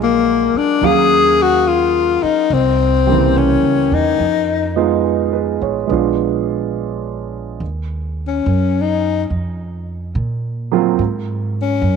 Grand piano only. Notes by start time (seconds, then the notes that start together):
Already playing: F#3 G#3 D4 F4
0.82 F#3 A#3 C#4 F5
3.07 C#3 G3 A#3
3.11 E3
4.76 G#3 B3 D#4 F4
5.04 G#4
5.33 B4
5.62 C#5
5.87 G#3 B3 D4
5.92 F4
10.72 F#3 A#3 C4 F4